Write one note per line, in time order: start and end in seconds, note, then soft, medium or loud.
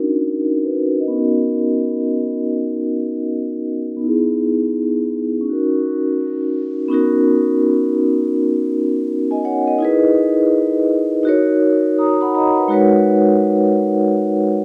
0.00 1.07 C#4 medium
0.00 0.42 D#4 medium
0.00 0.65 F#4 medium
0.00 0.42 A#4 medium
0.42 0.63 D#4 soft
0.42 0.63 A#4 medium
0.65 0.99 F#4 medium
0.65 0.98 B4 medium
1.00 1.18 A#4 medium
1.00 1.34 D#5 medium
1.08 3.95 B3 medium
1.08 3.97 C#4 medium
1.14 3.98 D#4 medium
1.14 4.00 F#4 medium
1.19 4.01 A#4 medium
3.96 5.41 B3 medium
4.00 5.43 D#4 medium
4.00 5.45 E4 medium
4.08 5.47 G#4 medium
5.41 6.85 C#4 medium
5.41 6.87 D#4 medium
5.49 6.89 F#4 medium
5.49 6.91 A#4 medium
6.88 7.90 B3 medium
6.88 7.91 C#4 medium
6.88 7.91 D#4 medium
6.93 7.92 F#4 medium
6.93 7.93 A#4 medium
9.31 9.44 D#5 medium
9.31 9.43 G#5 medium
9.45 9.66 C#5 medium
9.45 9.66 F#5 medium
9.67 10.02 A#4 medium
9.67 10.02 D#5 medium
9.79 10.80 D#4 medium
9.79 10.81 E4 medium
9.79 10.82 G#4 medium
9.85 10.83 B4 medium
11.23 11.86 D#4 medium
11.23 11.86 F#4 medium
11.23 11.62 A#4 medium
11.29 11.63 C#5 loud
11.98 12.20 A#5 medium
11.98 12.19 D#6 medium
12.21 12.34 F#5 medium
12.21 12.33 B5 medium
12.35 12.56 D#5 medium
12.35 12.56 A#5 medium
12.57 12.71 B4 medium
12.57 12.91 F#5 medium
12.68 13.69 G#3 medium
12.68 13.69 D#4 medium
12.68 13.70 F#4 medium
12.68 13.71 A#4 medium
12.72 13.71 B4 medium
12.72 13.72 C#5 medium